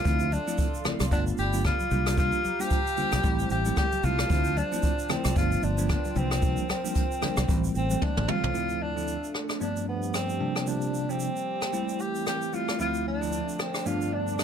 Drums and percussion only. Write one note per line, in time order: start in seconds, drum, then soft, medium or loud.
0.05 kick loud
0.05 shaker medium
0.20 shaker medium
0.32 high conga medium
0.32 shaker medium
0.48 shaker loud
0.58 kick medium
0.58 shaker medium
0.74 shaker medium
0.85 cross-stick loud
0.85 low conga medium
0.85 shaker medium
1.00 cross-stick medium
1.00 high conga medium
1.00 shaker loud
1.11 kick loud
1.11 shaker medium
1.27 shaker medium
1.38 shaker soft
1.53 high conga medium
1.53 shaker loud
1.65 kick loud
1.65 cross-stick medium
1.65 low conga medium
1.65 shaker medium
1.80 high conga medium
1.80 shaker soft
1.91 high conga medium
1.91 low conga medium
1.91 shaker medium
2.06 cross-stick medium
2.06 shaker loud
2.18 kick loud
2.18 shaker medium
2.32 shaker medium
2.45 high conga medium
2.45 shaker medium
2.61 shaker loud
2.70 kick medium
2.70 shaker medium
2.87 shaker medium
2.97 low conga medium
2.97 shaker soft
3.12 cross-stick medium
3.12 high conga medium
3.12 shaker loud
3.24 kick loud
3.24 shaker medium
3.39 shaker medium
3.50 shaker soft
3.66 high conga medium
3.66 shaker medium
3.77 kick loud
3.77 cross-stick medium
3.77 low conga medium
3.77 shaker medium
3.92 high conga medium
3.92 shaker medium
4.03 high conga medium
4.03 low conga medium
4.03 shaker medium
4.19 cross-stick medium
4.19 shaker medium
4.30 kick loud
4.30 shaker medium
4.44 shaker medium
4.57 high conga medium
4.57 shaker medium
4.73 shaker loud
4.82 kick medium
4.82 shaker medium
4.99 shaker medium
5.09 cross-stick loud
5.09 low conga medium
5.09 shaker soft
5.24 cross-stick medium
5.24 high conga medium
5.24 shaker loud
5.36 kick loud
5.36 shaker medium
5.52 shaker medium
5.63 shaker medium
5.78 high conga medium
5.78 shaker loud
5.89 kick loud
5.89 cross-stick loud
5.89 low conga medium
5.89 shaker medium
6.05 high conga medium
6.05 shaker soft
6.16 high conga medium
6.16 low conga medium
6.16 shaker medium
6.31 cross-stick medium
6.31 shaker medium
6.42 kick loud
6.42 shaker medium
6.57 shaker medium
6.69 cross-stick medium
6.69 open hi-hat medium
6.69 high conga medium
6.69 shaker medium
6.85 shaker loud
6.95 kick medium
6.95 hi-hat pedal medium
6.95 shaker medium
7.12 shaker medium
7.22 cross-stick medium
7.22 low conga medium
7.22 shaker soft
7.37 cross-stick medium
7.37 high conga medium
7.37 shaker loud
7.49 kick loud
7.49 shaker medium
7.64 shaker medium
7.75 shaker soft
7.90 high conga medium
7.90 shaker medium
8.02 kick loud
8.02 high tom medium
8.02 low conga medium
8.17 mid tom medium
8.17 high conga medium
8.28 mid tom medium
8.28 high conga medium
8.28 low conga medium
8.44 floor tom loud
8.55 shaker medium
8.69 shaker soft
8.98 shaker medium
9.08 shaker medium
9.24 shaker medium
9.34 cross-stick medium
9.49 cross-stick medium
9.49 shaker medium
9.61 shaker medium
9.77 shaker medium
10.03 shaker soft
10.14 cross-stick medium
10.14 shaker medium
10.29 shaker soft
10.56 cross-stick medium
10.56 shaker soft
10.67 shaker medium
10.81 shaker soft
10.94 shaker soft
11.10 shaker medium
11.20 shaker medium
11.36 shaker medium
11.62 cross-stick medium
11.62 shaker medium
11.73 shaker medium
11.89 shaker medium
12.00 shaker soft
12.15 shaker medium
12.27 cross-stick medium
12.27 shaker medium
12.42 shaker soft
12.53 shaker soft
12.68 cross-stick medium
12.68 shaker medium
12.80 shaker medium
12.94 shaker soft
13.23 shaker medium
13.32 shaker medium
13.49 shaker medium
13.59 cross-stick medium
13.59 shaker soft
13.74 cross-stick medium
13.74 shaker medium
13.86 shaker medium
14.01 shaker medium
14.28 shaker soft
14.39 cross-stick medium
14.39 shaker medium